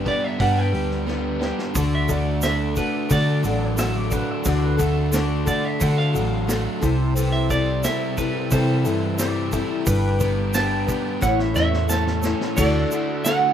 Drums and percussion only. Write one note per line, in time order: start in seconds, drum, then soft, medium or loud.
0.06 kick medium
0.06 open hi-hat medium
0.40 kick loud
0.40 open hi-hat medium
0.58 snare soft
0.74 open hi-hat medium
0.91 snare soft
1.08 snare medium
1.41 snare medium
1.59 snare medium
1.75 kick loud
1.75 open hi-hat medium
1.75 shaker loud
2.09 kick medium
2.09 open hi-hat medium
2.09 shaker medium
2.42 snare loud
2.42 open hi-hat medium
2.42 shaker medium
2.76 kick medium
2.76 open hi-hat medium
2.76 shaker medium
3.10 kick loud
3.10 open hi-hat medium
3.10 shaker medium
3.44 open hi-hat medium
3.44 shaker medium
3.78 snare loud
3.78 open hi-hat medium
3.78 shaker medium
4.11 kick medium
4.11 open hi-hat medium
4.11 shaker medium
4.45 kick loud
4.45 open hi-hat medium
4.45 shaker loud
4.79 kick medium
4.79 open hi-hat medium
4.79 shaker medium
5.13 snare loud
5.13 open hi-hat medium
5.13 shaker loud
5.47 kick medium
5.47 open hi-hat medium
5.47 shaker medium
5.81 kick loud
5.81 open hi-hat medium
5.81 shaker medium
5.99 snare soft
6.15 open hi-hat medium
6.15 shaker medium
6.49 snare loud
6.49 open hi-hat medium
6.49 shaker medium
6.83 kick loud
6.83 open hi-hat medium
6.83 shaker medium
7.17 open hi-hat medium
7.17 shaker medium
7.50 kick medium
7.50 open hi-hat medium
7.50 shaker medium
7.84 snare loud
7.84 open hi-hat medium
7.84 shaker medium
8.18 kick medium
8.18 open hi-hat medium
8.18 shaker medium
8.51 kick loud
8.51 open hi-hat medium
8.51 shaker medium
8.85 open hi-hat medium
8.85 shaker medium
9.19 snare loud
9.19 open hi-hat medium
9.19 shaker loud
9.52 kick medium
9.52 open hi-hat medium
9.52 shaker medium
9.86 kick loud
9.86 open hi-hat medium
9.86 shaker loud
10.20 kick medium
10.20 open hi-hat medium
10.20 shaker medium
10.54 snare loud
10.54 open hi-hat medium
10.54 shaker loud
10.88 kick medium
10.88 open hi-hat medium
10.88 shaker medium
11.22 kick loud
11.22 snare medium
11.22 shaker loud
11.39 snare medium
11.55 snare medium
11.55 shaker medium
11.73 snare medium
11.89 snare loud
11.89 shaker loud
12.07 snare medium
12.23 snare medium
12.23 shaker medium
12.41 snare medium
12.57 kick loud
12.57 crash loud
12.57 crash medium
12.57 shaker loud
12.91 crash medium
12.91 shaker medium
13.25 snare loud
13.25 crash medium
13.25 shaker loud